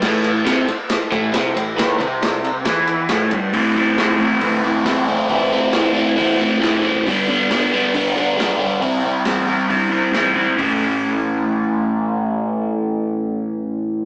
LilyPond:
<<
  \new Staff \with { instrumentName = "Transistor combo organ" } { \time 4/4 \key a \minor \tempo 4 = 136 <e' a' b'>8 r8 <e' a' c''>8 r8 <e' a' c''>8 r8 <e' a' c''>8 r8 | <e' a' b'>8 r8 <e' a' d''>8 r8 <e' a' c''>8 r8 <e' a' c''>8 r8 | <e' a' c''>8 r8 <e' a' c''>8 r8 <e' a' b'>8 r8 <e' a' c''>8 r8 | <e' a' b'>8 r8 <e' a' c''>8 r8 <e' a' c''>8 r8 <e' a' c''>8 r8 |
r1 | r1 | r1 | r1 | }
  \new Staff \with { instrumentName = "Overdriven electric guitar" } { \clef bass \time 4/4 \key a \minor a,4 c8 r4 a,8 c8 a,8 | dis8 c4. e4 a,8 g,8 | <a, e a c' e'>8 <a, e a c' e'>8 <a, e a c' e'>8 <a, e a c' e'>8 <a, e a c' e'>8 <a, e a c' e'>8 <a, e a c' e'>8 <a, e a c' e'>8 | <a, e a c' e'>8 <a, e a c' e'>8 <a, e a c' e'>8 <a, e a c' e'>8 <a, e a c' e'>8 <a, e a c' e'>8 <a, e a c' e'>8 <a, e a c' e'>8 |
<g, d g b d'>8 <g, d g b d'>8 <g, d g b d'>8 <g, d g b d'>8 <g, d g b d'>8 <g, d g b d'>8 <g, d g b d'>8 <g, d g b d'>8 | <c g c' e'>8 <c g c' e'>8 <c g c' e'>8 <c g c' e'>8 <c g c' e'>8 <c g c' e'>8 <c g c' e'>8 <c g c' e'>8 | <a, e a cis' e'>1~ | <a, e a cis' e'>1 | }
  \new Staff \with { instrumentName = "Picked electric bass" } { \clef bass \time 4/4 \key a \minor a,,4 c,8 r4 a,,8 c,8 a,,8 | dis,8 c,4. e,4 a,,8 g,,8 | a,,4 a,,4 d,4 e,4 | a,,4 c,4 e,4 f,,4 |
g,,4 g,,4 c,4 b,,4 | c,4 e,4 g,4 e,4 | a,,1~ | a,,1 | }
  \new DrumStaff \with { instrumentName = "Drums" } \drummode { \time 4/4 <cymc bd sn>8 cymr8 <cymr sn>8 cymr8 <cymr sn>8 <bd cymr>8 <cymr sn>8 cymr8 | <bd cymr sn>8 <bd cymr>8 <cymr sn>8 cymr8 <bd cymr sn>8 cymr8 <cymr sn>8 <bd cymr>8 | <hho bd>4 <hho sn>4 <hho bd>4 <hho sn>4 | <hho bd>4 <hho sn>4 <hho bd>4 <hho sn>8. bd16 |
<hho bd>4 <hho sn>4 <hho bd>4 <hho sn>4 | <hho bd>4 <hho sn>4 <hho bd>4 <hho sn>8. bd16 | <hho bd tomfh>4 r4 r4 r4 | r4 r4 r4 r4 | }
>>